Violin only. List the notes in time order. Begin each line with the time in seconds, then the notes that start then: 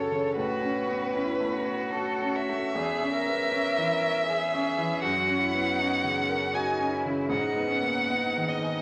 Already playing: C#5
0.36 B4
1.93 A4
2.36 E5
5.02 F#5
6.54 G#5
7.31 F#5
8.48 D#5